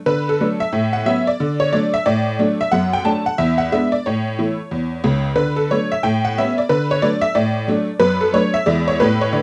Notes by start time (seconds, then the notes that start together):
0.06 D3 B4
0.29 A4
0.41 F#3 A3 D4
0.60 E5
0.73 A2
0.93 F#5
1.06 F#3 B3 C#4 E5
1.27 D5
1.40 D3
1.60 C#5
1.73 F#3 A3 D4 D5
1.94 E5
2.06 A2 D5
2.39 F#3 A3 D4
2.61 E5
2.72 F#2 F#5
2.93 G5
3.05 F#3 A3 D4 A5
3.26 F#5
3.38 E2 E5
3.58 F#5
3.72 G#3 B3 D4 E5
3.92 D5
4.06 A2 C#5
4.39 E3 A3 E4
4.71 E2
5.04 C#2 C#3
5.36 D3 B4
5.56 A4
5.71 F#3 A3 D4 C#5
5.92 E5
6.03 A2 G5
6.25 F#5
6.38 G3 B3 C#4 E5
6.58 D5
6.69 D3 B4
6.91 C#5
7.02 F#3 A3 D4 D5
7.21 E5
7.35 A2 D5
7.68 F#3 A3 D4
8.00 F#2 B4
8.21 A4
8.33 F#3 A3 D4 C#5
8.54 E5
8.66 E2 G#3 B3 E4 D5
8.88 C#5
9.00 A2 G3 A3 E4 B4
9.21 C#5
9.33 D3 D5